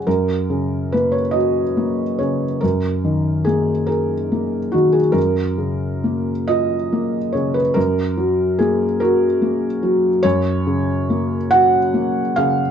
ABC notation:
X:1
M:6/8
L:1/16
Q:3/8=47
K:F#
V:1 name="Felt piano"
A4 B c d4 c2 | A4 G2 A4 F G | A6 d4 c B | A4 G2 A6 |
c6 f4 e2 |]
V:2 name="Felt piano" clef=bass
F,,2 C,2 A,2 F2 A,2 C,2 | F,,2 D,2 A,2 G2 A,2 D,2 | F,,2 C,2 A,2 E2 A,2 C,2 | F,,2 F,2 A,2 F2 A,2 F,2 |
F,,2 C,2 A,2 F2 A,2 C,2 |]